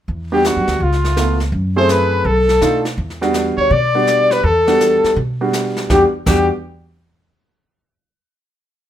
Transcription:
0.08 upright bass E2, brush sweep, kick
0.32 upright piano G3 B3 D4 F#4, trumpet G4, flugelhorn G4
0.45 trumpet F#4, flugelhorn F#4, snare, hi-hat pedal
0.56 upright bass F#2
0.67 upright bass D2, snare
0.80 upright bass C#2, trumpet F4, brush sweep, kick
0.84 flugelhorn F4
0.92 snare
1.05 snare
1.16 upright piano A3 B3 E4 F4, snare, hi-hat pedal
1.40 snare
1.52 upright bass F#2, brush sweep, kick
1.76 upright piano A3 C4 E4 G#4, trumpet C5, flugelhorn C5
1.89 trumpet B4, flugelhorn B4, snare, hi-hat pedal
2.25 upright bass B1, trumpet A4, flugelhorn A4, brush sweep, kick
2.49 snare
2.61 upright bass B2, upright piano A3 D4 D#4 F4, snare, hi-hat pedal
2.85 snare
2.98 upright bass E2, brush sweep, kick
3.10 snare
3.21 upright piano G3 B3 D4 F#4, snare
3.34 snare, hi-hat pedal
3.57 upright bass D2, trumpet C#5, flugelhorn C#5
3.70 upright bass B2, trumpet D5, flugelhorn D5, brush sweep, kick
3.95 upright piano G3 B3 D4 F#4
4.07 snare, hi-hat pedal
4.31 trumpet B4, flugelhorn B4, snare
4.43 upright bass E2, trumpet A4, flugelhorn A4, brush sweep, kick
4.67 upright piano G3 B3 D4 F#4, snare
4.81 snare, hi-hat pedal
5.04 muted upright bass stroke, snare
5.16 upright bass B2, brush sweep, kick
5.41 upright piano G3 B3 D4 F#4
5.53 snare, hi-hat pedal
5.77 snare
5.90 upright bass E2, upright piano G3 B3 D4 F#4, trumpet G4, flugelhorn G4, kick, snare
6.26 upright bass E2, upright piano G3 B3 D4 F#4, trumpet G4, flugelhorn G4, kick, snare, crash

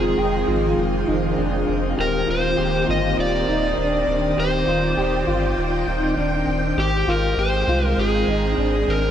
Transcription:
Already playing: sub bass F1, string machine D#3 F3 G#3 C4 F4, clean electric guitar F4, electric slide guitar G#4
0.18 sub bass F1, clean electric guitar G5
0.47 sub bass G#1, clean electric guitar F4
0.78 sub bass F1
1.08 sub bass F1, clean electric guitar D#4
1.37 sub bass F1, clean electric guitar D4
1.69 sub bass F1
1.97 sub bass D#1, string machine A#3 G4, clean electric guitar G4, electric slide guitar A#4
2.27 sub bass D#1, clean electric guitar F4, electric slide guitar C5
2.57 sub bass D#1, clean electric guitar G4
2.87 sub bass G1, clean electric guitar F4, electric slide guitar D#5
3.18 sub bass D#1, electric slide guitar D5
3.47 sub bass D#1, clean electric guitar D#4
3.77 sub bass D#1, clean electric guitar D4
4.08 sub bass D#1
4.37 sub bass D#1, clean electric guitar G4, electric slide guitar C5, string machine D5 G5
4.67 sub bass D#1, clean electric guitar F4
4.97 sub bass D#1, clean electric guitar G4
5.27 sub bass G1, clean electric guitar F4
5.58 sub bass D#1
5.87 sub bass D#1, clean electric guitar D#4
6.17 sub bass D#1, clean electric guitar D4
6.47 sub bass D#1
6.77 sub bass G#1, string machine G#3 C4, clean electric guitar G4, electric slide guitar G4
7.07 sub bass G#1, clean electric guitar F4, electric slide guitar A#4
7.37 sub bass G#1, clean electric guitar G4, electric slide guitar C5
7.67 sub bass C2, clean electric guitar F4
7.86 electric slide guitar A#4
7.97 sub bass G#1, electric slide guitar G#4
8.28 sub bass G#1, clean electric guitar D#4
8.58 sub bass G#1, clean electric guitar D4
8.88 sub bass G#1, electric slide guitar A#4

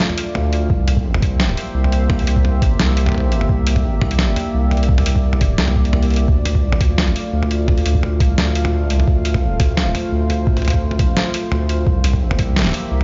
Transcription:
Already playing: analog synth pad A3 F4 D5 F5
0.10 mid tom
0.18 closed hi-hat
0.35 sub bass D2, mid tom
0.53 closed hi-hat
0.70 sub bass C2, analog synth pad A#3 G4 C5 E5, kick
0.88 closed hi-hat, mid tom
0.97 kick
1.14 mid tom
1.22 sub bass C2, kick, closed hi-hat
1.40 snare
1.49 mid tom
1.57 open hi-hat
1.74 sub bass C2
1.84 mid tom
1.92 closed hi-hat
2.10 kick, mid tom
2.19 open hi-hat
2.27 sub bass C2, closed hi-hat
2.36 kick
2.45 mid tom
2.62 kick, closed hi-hat
2.79 sub bass C2, snare, mid tom
2.97 closed hi-hat
3.06 mid tom
3.09 mid tom
3.12 mid tom
3.14 mid tom
3.18 mid tom
3.20 mid tom
3.32 closed hi-hat
3.41 mid tom
3.49 sub bass C2, analog synth pad D5, kick
3.67 closed hi-hat
3.76 kick, mid tom
4.01 sub bass C2, kick, mid tom
4.11 closed hi-hat
4.19 snare
4.36 mid tom, open hi-hat
4.54 sub bass C2
4.71 closed hi-hat, mid tom
4.77 closed hi-hat
4.83 closed hi-hat
4.89 kick
4.98 mid tom, open hi-hat
5.06 sub bass C2, closed hi-hat
5.16 kick
5.33 mid tom
5.41 kick, closed hi-hat
5.58 sub bass C2, snare
5.68 mid tom
5.76 kick
5.85 closed hi-hat
5.93 mid tom
6.03 open hi-hat
6.10 closed hi-hat
6.14 closed hi-hat
6.16 closed hi-hat
6.28 sub bass D2, analog synth pad A3 F4 F5, kick
6.45 closed hi-hat, mid tom
6.55 kick
6.72 mid tom
6.81 sub bass D2, kick, closed hi-hat
6.98 snare
7.08 mid tom
7.16 open hi-hat
7.33 sub bass D2
7.43 mid tom
7.51 closed hi-hat
7.68 kick, mid tom
7.78 open hi-hat
7.86 sub bass D2, closed hi-hat
7.95 kick
8.03 mid tom
8.20 kick, closed hi-hat
8.38 sub bass D2, snare, mid tom
8.55 closed hi-hat
8.65 mid tom
8.86 sub bass C#2
8.90 closed hi-hat
9.00 mid tom
9.08 sub bass D2, analog synth pad C5, kick
9.25 closed hi-hat
9.34 kick, mid tom
9.60 sub bass D2, kick, closed hi-hat, mid tom
9.77 snare
9.95 mid tom, open hi-hat
10.12 sub bass D2
10.30 closed hi-hat, mid tom
10.47 kick
10.57 mid tom, open hi-hat
10.62 sub bass D2, closed hi-hat, mid tom
10.68 closed hi-hat, mid tom
10.70 kick, closed hi-hat
10.91 mid tom
10.99 kick, closed hi-hat
11.17 snare
11.34 closed hi-hat
11.52 sub bass D2, mid tom
11.69 closed hi-hat
11.86 sub bass C2, analog synth pad A#3 G4 E5, kick
12.04 closed hi-hat, mid tom
12.13 kick
12.31 mid tom
12.39 sub bass C2, kick, closed hi-hat
12.56 snare
12.59 snare
12.62 snare
12.65 snare, mid tom
12.67 snare
12.69 snare
12.72 snare, open hi-hat
12.91 sub bass C2
13.01 mid tom

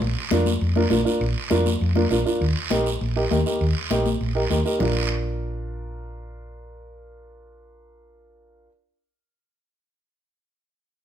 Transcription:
0.02 fingered electric bass A#1, high conga, long guiro
0.31 fingered electric bass F2, upright piano D4 F4 A#4, high conga, short guiro
0.46 high conga, short guiro
0.61 fingered electric bass F2, high conga, long guiro
0.76 upright piano D4 F4 A#4, high conga
0.90 fingered electric bass A#1, upright piano D4 F4 A#4, high conga, short guiro
1.05 upright piano D4 F4 A#4, short guiro
1.21 fingered electric bass A#1, high conga, long guiro
1.50 fingered electric bass F2, upright piano D4 F4 A#4, high conga, short guiro
1.66 high conga, short guiro
1.80 fingered electric bass F2, high conga, long guiro
1.96 upright piano D4 F4 A#4, high conga
2.11 fingered electric bass A#1, upright piano D4 F4 A#4, high conga, short guiro
2.25 upright piano D4 F4 A#4, short guiro
2.40 fingered electric bass D#2, high conga, long guiro
2.70 fingered electric bass A#1, upright piano D#4 G4 A#4, high conga, short guiro
2.86 short guiro
3.01 fingered electric bass A#1, high conga, long guiro
3.16 upright piano D#4 G4 A#4
3.30 fingered electric bass D#2, upright piano D#4 G4 A#4, high conga, short guiro
3.46 upright piano D#4 G4 A#4, short guiro
3.61 fingered electric bass D#2, high conga, long guiro
3.90 fingered electric bass A#1, upright piano D#4 G4 A#4, high conga, short guiro
4.06 high conga, short guiro
4.21 fingered electric bass A#1, high conga, long guiro
4.35 upright piano D#4 G4 A#4
4.50 fingered electric bass D#2, upright piano D#4 G4 A#4, high conga, short guiro
4.65 upright piano D#4 G4 A#4, short guiro
4.79 fingered electric bass A#1, upright piano D4 F4 A#4, low conga, long guiro

